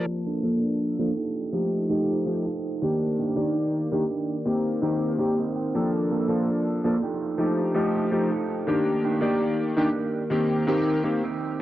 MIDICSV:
0, 0, Header, 1, 4, 480
1, 0, Start_track
1, 0, Key_signature, -2, "major"
1, 0, Tempo, 731707
1, 47, Time_signature, 4, 2, 24, 8
1, 7621, End_track
2, 0, Start_track
2, 0, Title_t, "Clean electric guitar"
2, 0, Program_c, 0, 27
2, 171, Note_on_c, 0, 58, 99
2, 174, Note_on_c, 0, 62, 96
2, 176, Note_on_c, 0, 69, 112
2, 413, Note_off_c, 0, 58, 0
2, 413, Note_off_c, 0, 62, 0
2, 413, Note_off_c, 0, 69, 0
2, 651, Note_on_c, 0, 58, 82
2, 655, Note_on_c, 0, 62, 74
2, 657, Note_on_c, 0, 69, 91
2, 758, Note_off_c, 0, 69, 0
2, 761, Note_off_c, 0, 58, 0
2, 762, Note_off_c, 0, 62, 0
2, 763, Note_on_c, 0, 63, 84
2, 765, Note_on_c, 0, 65, 77
2, 768, Note_on_c, 0, 69, 90
2, 770, Note_on_c, 0, 67, 76
2, 1156, Note_off_c, 0, 63, 0
2, 1156, Note_off_c, 0, 65, 0
2, 1156, Note_off_c, 0, 67, 0
2, 1156, Note_off_c, 0, 69, 0
2, 1243, Note_on_c, 0, 63, 104
2, 1245, Note_on_c, 0, 65, 94
2, 1247, Note_on_c, 0, 67, 92
2, 1250, Note_on_c, 0, 69, 111
2, 1429, Note_off_c, 0, 63, 0
2, 1429, Note_off_c, 0, 65, 0
2, 1429, Note_off_c, 0, 67, 0
2, 1430, Note_off_c, 0, 69, 0
2, 1611, Note_on_c, 0, 63, 84
2, 1612, Note_on_c, 0, 65, 74
2, 1614, Note_on_c, 0, 69, 90
2, 1616, Note_on_c, 0, 67, 75
2, 1853, Note_off_c, 0, 63, 0
2, 1853, Note_off_c, 0, 65, 0
2, 1853, Note_off_c, 0, 67, 0
2, 1853, Note_off_c, 0, 69, 0
2, 2091, Note_on_c, 0, 62, 103
2, 2093, Note_on_c, 0, 63, 94
2, 2096, Note_on_c, 0, 67, 112
2, 2333, Note_off_c, 0, 62, 0
2, 2333, Note_off_c, 0, 63, 0
2, 2334, Note_off_c, 0, 67, 0
2, 2571, Note_on_c, 0, 62, 84
2, 2574, Note_on_c, 0, 63, 76
2, 2575, Note_on_c, 0, 67, 91
2, 2869, Note_off_c, 0, 62, 0
2, 2870, Note_off_c, 0, 63, 0
2, 2870, Note_off_c, 0, 67, 0
2, 3164, Note_on_c, 0, 60, 103
2, 3166, Note_on_c, 0, 63, 99
2, 3169, Note_on_c, 0, 70, 111
2, 3349, Note_off_c, 0, 60, 0
2, 3349, Note_off_c, 0, 63, 0
2, 3350, Note_off_c, 0, 70, 0
2, 3406, Note_on_c, 0, 74, 68
2, 3525, Note_off_c, 0, 74, 0
2, 3528, Note_on_c, 0, 60, 84
2, 3532, Note_on_c, 0, 63, 76
2, 3536, Note_on_c, 0, 70, 91
2, 3538, Note_on_c, 0, 75, 71
2, 3637, Note_off_c, 0, 75, 0
2, 3645, Note_on_c, 0, 79, 72
2, 3772, Note_off_c, 0, 60, 0
2, 3773, Note_off_c, 0, 63, 0
2, 3773, Note_off_c, 0, 70, 0
2, 3869, Note_off_c, 0, 79, 0
2, 4011, Note_on_c, 0, 58, 105
2, 4012, Note_on_c, 0, 62, 96
2, 4015, Note_on_c, 0, 69, 118
2, 4253, Note_off_c, 0, 58, 0
2, 4253, Note_off_c, 0, 62, 0
2, 4253, Note_off_c, 0, 69, 0
2, 4490, Note_on_c, 0, 58, 85
2, 4493, Note_on_c, 0, 62, 77
2, 4496, Note_on_c, 0, 69, 94
2, 4600, Note_off_c, 0, 69, 0
2, 4602, Note_off_c, 0, 62, 0
2, 4605, Note_off_c, 0, 58, 0
2, 4605, Note_on_c, 0, 63, 88
2, 4607, Note_on_c, 0, 65, 78
2, 4609, Note_on_c, 0, 69, 97
2, 4610, Note_on_c, 0, 67, 79
2, 4996, Note_off_c, 0, 63, 0
2, 4997, Note_off_c, 0, 65, 0
2, 4997, Note_off_c, 0, 67, 0
2, 4997, Note_off_c, 0, 69, 0
2, 5084, Note_on_c, 0, 63, 101
2, 5086, Note_on_c, 0, 65, 99
2, 5088, Note_on_c, 0, 67, 96
2, 5089, Note_on_c, 0, 69, 115
2, 5270, Note_off_c, 0, 63, 0
2, 5270, Note_off_c, 0, 65, 0
2, 5270, Note_off_c, 0, 67, 0
2, 5270, Note_off_c, 0, 69, 0
2, 5451, Note_on_c, 0, 63, 83
2, 5453, Note_on_c, 0, 65, 79
2, 5456, Note_on_c, 0, 67, 76
2, 5461, Note_on_c, 0, 69, 90
2, 5693, Note_off_c, 0, 63, 0
2, 5694, Note_off_c, 0, 65, 0
2, 5694, Note_off_c, 0, 67, 0
2, 5694, Note_off_c, 0, 69, 0
2, 5933, Note_on_c, 0, 62, 101
2, 5934, Note_on_c, 0, 63, 96
2, 5935, Note_on_c, 0, 67, 115
2, 6174, Note_off_c, 0, 62, 0
2, 6174, Note_off_c, 0, 63, 0
2, 6174, Note_off_c, 0, 67, 0
2, 6409, Note_on_c, 0, 62, 84
2, 6414, Note_on_c, 0, 63, 78
2, 6418, Note_on_c, 0, 67, 94
2, 6709, Note_off_c, 0, 62, 0
2, 6710, Note_off_c, 0, 63, 0
2, 6710, Note_off_c, 0, 67, 0
2, 7004, Note_on_c, 0, 60, 105
2, 7007, Note_on_c, 0, 63, 97
2, 7010, Note_on_c, 0, 70, 116
2, 7190, Note_off_c, 0, 60, 0
2, 7190, Note_off_c, 0, 63, 0
2, 7190, Note_off_c, 0, 70, 0
2, 7372, Note_on_c, 0, 60, 84
2, 7374, Note_on_c, 0, 63, 77
2, 7375, Note_on_c, 0, 67, 93
2, 7613, Note_off_c, 0, 60, 0
2, 7614, Note_off_c, 0, 63, 0
2, 7614, Note_off_c, 0, 67, 0
2, 7621, End_track
3, 0, Start_track
3, 0, Title_t, "Ambient pad"
3, 0, Program_c, 1, 92
3, 46, Note_on_c, 1, 62, 70
3, 47, Note_on_c, 1, 53, 78
3, 47, Note_on_c, 1, 58, 69
3, 47, Note_on_c, 1, 74, 84
3, 48, Note_on_c, 1, 69, 72
3, 759, Note_off_c, 1, 62, 0
3, 760, Note_off_c, 1, 58, 0
3, 760, Note_off_c, 1, 69, 0
3, 760, Note_off_c, 1, 74, 0
3, 765, Note_on_c, 1, 57, 76
3, 765, Note_on_c, 1, 63, 74
3, 765, Note_on_c, 1, 67, 76
3, 765, Note_on_c, 1, 72, 90
3, 1947, Note_off_c, 1, 53, 0
3, 1954, Note_off_c, 1, 57, 0
3, 1954, Note_off_c, 1, 63, 0
3, 1954, Note_off_c, 1, 67, 0
3, 1954, Note_off_c, 1, 72, 0
3, 1963, Note_on_c, 1, 58, 76
3, 1963, Note_on_c, 1, 70, 89
3, 1964, Note_on_c, 1, 51, 83
3, 1965, Note_on_c, 1, 67, 73
3, 1965, Note_on_c, 1, 74, 73
3, 2915, Note_off_c, 1, 70, 0
3, 2916, Note_off_c, 1, 67, 0
3, 2916, Note_off_c, 1, 74, 0
3, 2924, Note_on_c, 1, 60, 74
3, 2924, Note_on_c, 1, 67, 73
3, 2926, Note_on_c, 1, 72, 87
3, 3866, Note_off_c, 1, 51, 0
3, 3876, Note_off_c, 1, 60, 0
3, 3876, Note_off_c, 1, 67, 0
3, 3877, Note_off_c, 1, 72, 0
3, 3887, Note_on_c, 1, 53, 80
3, 3887, Note_on_c, 1, 62, 72
3, 3887, Note_on_c, 1, 74, 85
3, 3888, Note_on_c, 1, 69, 70
3, 4579, Note_off_c, 1, 58, 0
3, 4599, Note_off_c, 1, 74, 0
3, 4600, Note_off_c, 1, 62, 0
3, 4600, Note_off_c, 1, 69, 0
3, 4606, Note_on_c, 1, 57, 77
3, 4606, Note_on_c, 1, 63, 79
3, 4606, Note_on_c, 1, 67, 78
3, 4606, Note_on_c, 1, 72, 93
3, 5788, Note_off_c, 1, 53, 0
3, 5794, Note_off_c, 1, 57, 0
3, 5794, Note_off_c, 1, 63, 0
3, 5794, Note_off_c, 1, 72, 0
3, 5808, Note_on_c, 1, 58, 75
3, 5808, Note_on_c, 1, 70, 91
3, 5809, Note_on_c, 1, 51, 79
3, 5809, Note_on_c, 1, 74, 74
3, 6758, Note_off_c, 1, 51, 0
3, 6758, Note_off_c, 1, 74, 0
3, 6764, Note_on_c, 1, 60, 73
3, 6765, Note_on_c, 1, 51, 82
3, 7621, Note_off_c, 1, 51, 0
3, 7621, Note_off_c, 1, 58, 0
3, 7621, Note_off_c, 1, 60, 0
3, 7621, Note_off_c, 1, 67, 0
3, 7621, Note_off_c, 1, 70, 0
3, 7621, End_track
4, 0, Start_track
4, 0, Title_t, "Electric grand piano"
4, 0, Program_c, 2, 2
4, 0, Note_on_c, 2, 53, 100
4, 0, Note_on_c, 2, 58, 88
4, 0, Note_on_c, 2, 74, 89
4, 0, Note_on_c, 2, 81, 113
4, 256, Note_off_c, 2, 53, 0
4, 257, Note_off_c, 2, 58, 0
4, 259, Note_off_c, 2, 74, 0
4, 261, Note_off_c, 2, 81, 0
4, 280, Note_on_c, 2, 53, 79
4, 282, Note_on_c, 2, 58, 76
4, 286, Note_on_c, 2, 62, 72
4, 289, Note_on_c, 2, 69, 90
4, 620, Note_off_c, 2, 53, 0
4, 621, Note_off_c, 2, 58, 0
4, 623, Note_off_c, 2, 62, 0
4, 625, Note_off_c, 2, 69, 0
4, 648, Note_on_c, 2, 53, 89
4, 651, Note_on_c, 2, 58, 80
4, 654, Note_on_c, 2, 62, 81
4, 658, Note_on_c, 2, 69, 97
4, 710, Note_off_c, 2, 53, 0
4, 712, Note_off_c, 2, 58, 0
4, 714, Note_off_c, 2, 62, 0
4, 716, Note_off_c, 2, 69, 0
4, 999, Note_on_c, 2, 53, 76
4, 1003, Note_on_c, 2, 57, 69
4, 1006, Note_on_c, 2, 63, 68
4, 1009, Note_on_c, 2, 67, 82
4, 1216, Note_off_c, 2, 53, 0
4, 1218, Note_off_c, 2, 57, 0
4, 1219, Note_off_c, 2, 63, 0
4, 1221, Note_off_c, 2, 67, 0
4, 1241, Note_on_c, 2, 53, 88
4, 1245, Note_on_c, 2, 57, 79
4, 1248, Note_on_c, 2, 63, 84
4, 1251, Note_on_c, 2, 67, 98
4, 1457, Note_off_c, 2, 53, 0
4, 1459, Note_off_c, 2, 57, 0
4, 1460, Note_off_c, 2, 63, 0
4, 1462, Note_off_c, 2, 67, 0
4, 1481, Note_on_c, 2, 53, 77
4, 1484, Note_on_c, 2, 57, 70
4, 1488, Note_on_c, 2, 63, 69
4, 1491, Note_on_c, 2, 67, 84
4, 1592, Note_off_c, 2, 53, 0
4, 1594, Note_off_c, 2, 57, 0
4, 1596, Note_off_c, 2, 63, 0
4, 1597, Note_off_c, 2, 67, 0
4, 1848, Note_on_c, 2, 51, 80
4, 1852, Note_on_c, 2, 58, 77
4, 1855, Note_on_c, 2, 62, 75
4, 1858, Note_on_c, 2, 67, 92
4, 2176, Note_off_c, 2, 51, 0
4, 2178, Note_off_c, 2, 58, 0
4, 2180, Note_off_c, 2, 62, 0
4, 2181, Note_off_c, 2, 67, 0
4, 2201, Note_on_c, 2, 51, 84
4, 2205, Note_on_c, 2, 58, 77
4, 2208, Note_on_c, 2, 74, 76
4, 2212, Note_on_c, 2, 67, 90
4, 2541, Note_off_c, 2, 51, 0
4, 2543, Note_off_c, 2, 58, 0
4, 2544, Note_off_c, 2, 74, 0
4, 2546, Note_off_c, 2, 67, 0
4, 2568, Note_on_c, 2, 51, 86
4, 2571, Note_on_c, 2, 58, 78
4, 2574, Note_on_c, 2, 62, 78
4, 2578, Note_on_c, 2, 67, 94
4, 2631, Note_off_c, 2, 51, 0
4, 2632, Note_off_c, 2, 58, 0
4, 2634, Note_off_c, 2, 62, 0
4, 2636, Note_off_c, 2, 67, 0
4, 2922, Note_on_c, 2, 51, 76
4, 2925, Note_on_c, 2, 58, 72
4, 2928, Note_on_c, 2, 60, 72
4, 2931, Note_on_c, 2, 67, 86
4, 3137, Note_off_c, 2, 51, 0
4, 3139, Note_off_c, 2, 58, 0
4, 3140, Note_off_c, 2, 60, 0
4, 3142, Note_off_c, 2, 67, 0
4, 3161, Note_on_c, 2, 51, 93
4, 3164, Note_on_c, 2, 58, 84
4, 3167, Note_on_c, 2, 60, 86
4, 3171, Note_on_c, 2, 67, 100
4, 3377, Note_off_c, 2, 51, 0
4, 3378, Note_off_c, 2, 58, 0
4, 3380, Note_off_c, 2, 60, 0
4, 3382, Note_off_c, 2, 67, 0
4, 3400, Note_on_c, 2, 51, 78
4, 3404, Note_on_c, 2, 58, 71
4, 3407, Note_on_c, 2, 60, 70
4, 3411, Note_on_c, 2, 67, 84
4, 3512, Note_off_c, 2, 51, 0
4, 3514, Note_off_c, 2, 58, 0
4, 3515, Note_off_c, 2, 60, 0
4, 3517, Note_off_c, 2, 67, 0
4, 3769, Note_on_c, 2, 53, 85
4, 3772, Note_on_c, 2, 58, 79
4, 3776, Note_on_c, 2, 62, 77
4, 3780, Note_on_c, 2, 69, 92
4, 4097, Note_off_c, 2, 53, 0
4, 4098, Note_off_c, 2, 58, 0
4, 4100, Note_off_c, 2, 62, 0
4, 4102, Note_off_c, 2, 69, 0
4, 4119, Note_on_c, 2, 53, 83
4, 4123, Note_on_c, 2, 58, 74
4, 4125, Note_on_c, 2, 62, 77
4, 4129, Note_on_c, 2, 69, 90
4, 4460, Note_off_c, 2, 53, 0
4, 4462, Note_off_c, 2, 58, 0
4, 4463, Note_off_c, 2, 62, 0
4, 4465, Note_off_c, 2, 69, 0
4, 4488, Note_on_c, 2, 53, 92
4, 4492, Note_on_c, 2, 58, 81
4, 4494, Note_on_c, 2, 62, 83
4, 4497, Note_on_c, 2, 69, 99
4, 4551, Note_off_c, 2, 53, 0
4, 4553, Note_off_c, 2, 58, 0
4, 4554, Note_off_c, 2, 62, 0
4, 4555, Note_off_c, 2, 69, 0
4, 4841, Note_on_c, 2, 53, 81
4, 4844, Note_on_c, 2, 57, 70
4, 4847, Note_on_c, 2, 63, 72
4, 4851, Note_on_c, 2, 67, 86
4, 5057, Note_off_c, 2, 53, 0
4, 5058, Note_off_c, 2, 57, 0
4, 5060, Note_off_c, 2, 63, 0
4, 5062, Note_off_c, 2, 67, 0
4, 5080, Note_on_c, 2, 53, 95
4, 5083, Note_on_c, 2, 57, 88
4, 5085, Note_on_c, 2, 63, 84
4, 5088, Note_on_c, 2, 67, 101
4, 5296, Note_off_c, 2, 53, 0
4, 5298, Note_off_c, 2, 57, 0
4, 5299, Note_off_c, 2, 63, 0
4, 5300, Note_off_c, 2, 67, 0
4, 5321, Note_on_c, 2, 53, 79
4, 5324, Note_on_c, 2, 57, 70
4, 5328, Note_on_c, 2, 63, 70
4, 5330, Note_on_c, 2, 67, 88
4, 5432, Note_off_c, 2, 53, 0
4, 5434, Note_off_c, 2, 57, 0
4, 5436, Note_off_c, 2, 63, 0
4, 5437, Note_off_c, 2, 67, 0
4, 5687, Note_on_c, 2, 51, 80
4, 5691, Note_on_c, 2, 58, 76
4, 5694, Note_on_c, 2, 62, 77
4, 5697, Note_on_c, 2, 67, 91
4, 6016, Note_off_c, 2, 51, 0
4, 6018, Note_off_c, 2, 58, 0
4, 6019, Note_off_c, 2, 62, 0
4, 6021, Note_off_c, 2, 67, 0
4, 6039, Note_on_c, 2, 51, 84
4, 6043, Note_on_c, 2, 58, 78
4, 6046, Note_on_c, 2, 74, 74
4, 6049, Note_on_c, 2, 67, 94
4, 6380, Note_off_c, 2, 51, 0
4, 6381, Note_off_c, 2, 58, 0
4, 6383, Note_off_c, 2, 74, 0
4, 6385, Note_off_c, 2, 67, 0
4, 6406, Note_on_c, 2, 51, 88
4, 6409, Note_on_c, 2, 58, 81
4, 6412, Note_on_c, 2, 62, 84
4, 6416, Note_on_c, 2, 67, 102
4, 6470, Note_off_c, 2, 51, 0
4, 6471, Note_off_c, 2, 58, 0
4, 6473, Note_off_c, 2, 62, 0
4, 6475, Note_off_c, 2, 67, 0
4, 6757, Note_on_c, 2, 51, 79
4, 6761, Note_on_c, 2, 58, 72
4, 6763, Note_on_c, 2, 60, 73
4, 6767, Note_on_c, 2, 67, 90
4, 6975, Note_off_c, 2, 51, 0
4, 6977, Note_off_c, 2, 58, 0
4, 6978, Note_off_c, 2, 60, 0
4, 6980, Note_off_c, 2, 67, 0
4, 6999, Note_on_c, 2, 51, 93
4, 7002, Note_on_c, 2, 58, 85
4, 7006, Note_on_c, 2, 60, 85
4, 7009, Note_on_c, 2, 67, 105
4, 7216, Note_off_c, 2, 51, 0
4, 7217, Note_off_c, 2, 58, 0
4, 7219, Note_off_c, 2, 60, 0
4, 7221, Note_off_c, 2, 67, 0
4, 7239, Note_on_c, 2, 51, 79
4, 7242, Note_on_c, 2, 58, 70
4, 7245, Note_on_c, 2, 60, 73
4, 7249, Note_on_c, 2, 67, 84
4, 7351, Note_off_c, 2, 51, 0
4, 7353, Note_off_c, 2, 58, 0
4, 7354, Note_off_c, 2, 60, 0
4, 7356, Note_off_c, 2, 67, 0
4, 7621, End_track
0, 0, End_of_file